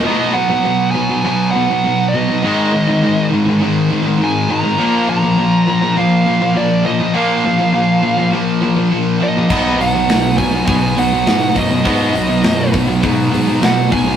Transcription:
<<
  \new Staff \with { instrumentName = "Lead electric guitar" } { \time 4/4 \key ces \lydian \tempo 4 = 102 ees''8 fis''4 aes''8 aes''8 fis''4 ees''8~ | ees''4. r4. aes''8 bes''8~ | bes''8 bes''4. f''4 d''8 ees''8 | f''2 r4. ees''8~ |
ees''8 fis''4 aes''8 aes''8 fis''4 dis''8~ | dis''4. r4. fis''8 aes''8 | }
  \new Staff \with { instrumentName = "Distorted electric guitar" } { \clef bass \time 4/4 \key ces \lydian <b, fis b>2 <b, fis b>2 | <aes, ees aes>2 <aes, ees aes>2 | <bes, f bes>2 <bes, f bes>2 | <bes, f bes>2 <bes, f bes>2 |
<b, fis b>2 <b, fis b>2 | <b, fis b>2 <b, fis b>2 | }
  \new Staff \with { instrumentName = "Distorted electric guitar" } { \clef bass \time 4/4 \key ces \lydian <b, fis b>8 <b, fis>16 <b, fis>16 <b, fis>8 <b, fis>16 <b, fis>16 <b, fis>8 <b, fis>16 <b, fis>16 <b, fis>8 <b, fis>16 <b, fis>16 | <aes, ees aes>8 <aes, ees>16 <aes, ees>16 <aes, ees>8 <aes, ees>16 <aes, ees>16 <aes, ees>8 <aes, ees>16 <aes, ees>16 <aes, ees>8 <aes, ees>16 <aes, ees>16 | <bes, f bes>8 <bes, f>16 <bes, f>16 <bes, f>8 <bes, f>16 <bes, f>16 <bes, f>8 <bes, f>16 <bes, f>16 <bes, f>8 <bes, f>16 <bes, f>16 | <bes, f bes>8 <bes, f>16 <bes, f>16 <bes, f>8 <bes, f>16 <bes, f>16 <bes, f>8 <bes, f>16 <bes, f>16 <bes, f>8 <bes, f>16 <bes, f>16 |
<b, fis b>8 <b, fis>16 <b, fis>16 <b, fis>8 <b, fis>16 <b, fis>16 <b, fis>8 <b, fis>16 <b, fis>16 <b, fis>8 <b, fis>16 <b, fis>16 | <b, fis b>8 <b, fis>16 <b, fis>16 <b, fis>8 <b, fis>16 <b, fis>16 <b, fis>8 <b, fis>16 <b, fis>16 <b, fis>8 <b, fis>16 <b, fis>16 | }
  \new Staff \with { instrumentName = "Distorted electric guitar" } { \clef bass \time 4/4 \key ces \lydian <b, fis b>8 <b, fis>16 <b, fis>16 <b, fis>8 <b, fis>16 <b, fis>16 <b, fis>8 <b, fis>16 <b, fis>16 <b, fis>8 <b, fis>16 <b, fis>16 | <aes, ees aes>8 <aes, ees>16 <aes, ees>16 <aes, ees>8 <aes, ees>16 <aes, ees>16 <aes, ees>8 <aes, ees>16 <aes, ees>16 <aes, ees>8 <aes, ees>16 <aes, ees>16 | <bes, f bes>8 <bes, f>16 <bes, f>16 <bes, f>8 <bes, f>16 <bes, f>16 <bes, f>8 <bes, f>16 <bes, f>16 <bes, f>8 <bes, f>16 <bes, f>16 | <bes, f bes>8 <bes, f>16 <bes, f>16 <bes, f>8 <bes, f>16 <bes, f>16 <bes, f>8 <bes, f>16 <bes, f>16 <bes, f>8 <bes, f>16 <bes, f>16 |
<b, fis b>8 <b, fis>16 <b, fis>16 <b, fis>8 <b, fis>16 <b, fis>16 <b, fis>8 <b, fis>16 <b, fis>16 <b, fis>8 <b, fis>16 <b, fis>16 | <b, fis b>8 <b, fis>16 <b, fis>16 <b, fis>8 <b, fis>16 <b, fis>16 <b, fis>8 <b, fis>16 <b, fis>16 <b, fis>8 <b, fis>16 <b, fis>16 | }
  \new Staff \with { instrumentName = "Fingered electric bass" } { \clef bass \time 4/4 \key ces \lydian r1 | r1 | r1 | r1 |
b,,8 b,,8 b,,4 b,,8 b,,8 aes,8 fis,8 | aes,8 b,,8 fis,8 b,,8 aes,8 aes,8 b,8 b,,8 | }
  \new DrumStaff \with { instrumentName = "Drums" } \drummode { \time 4/4 r4 r4 r4 r4 | r4 r4 r4 r4 | r4 r4 r4 r4 | r4 r4 r4 r4 |
<cymc bd>8 hho8 <hho sn>8 <hho bd>8 <hho bd>8 hho8 <hho sn>8 <hho bd>8 | <hho bd>8 hho8 <hho sn>8 <hho bd>8 <hho bd>8 hho8 <hho sn>8 <hho bd>8 | }
>>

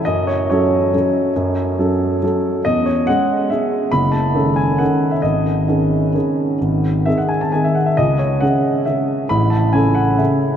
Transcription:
\new Staff \with { instrumentName = "Grand piano" } { \time 3/4 \key cis \minor \tempo 4 = 136 << { dis''8 cis''8 cis''2~ | cis''2. | dis''8 cis''8 fis''4 e''4 | b''8 a''4 gis''8 fis''8. e''16 |
dis''2.~ | dis''4 e''16 fis''16 gis''16 a''16 gis''16 e''16 fis''16 e''16 | dis''8 cis''8 fis''4 e''4 | b''8 a''8 gis''8 fis''8 e''4 | } \\ { fis,4 <fis cis' a'>4 <fis cis' a'>4 | fis,4 <fis cis' a'>4 <fis cis' a'>4 | e,4 <gis cis' gis'>4 <gis cis' gis'>4 | fis,,4 <dis cis' a'>4 <dis cis' a'>4 |
gis,,4 <dis cis' gis'>4 <dis cis' gis'>4 | gis,,4 <dis bis gis'>4 <dis bis gis'>4 | cis,4 <cis cis' gis'>4 <cis cis' gis'>4 | a,,4 <cis cis' a'>4 <cis cis' a'>4 | } >> }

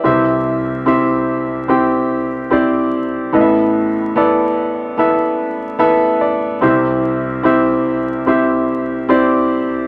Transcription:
<<
  \new Staff \with { instrumentName = "Grand piano" } { \time 4/4 \key c \major \tempo 4 = 73 << { b'16 r2. r8. | r2. e''8 d''8 | r1 | } \\ { <c' e' g' c'' e''>4 <c' e' g' c'' e''>4 <c' e' g' c'' g''>4 <c' e' g' c'' d''>4 | <b e' a' b' ees'' e''>4 <b e' a' b' d''>4 <b e' a' b' e''>4 <b e' a' b'>4 | <c' e' g' c'' e''>4 <c' e' g' c'' e''>4 <c' e' g' c'' e''>4 <c' e' g' c'' d''>4 | } >> }
  \new Staff \with { instrumentName = "Grand piano" } { \clef bass \time 4/4 \key c \major <c, c>1 | <a,, a,>1 | <c, c>1 | }
>>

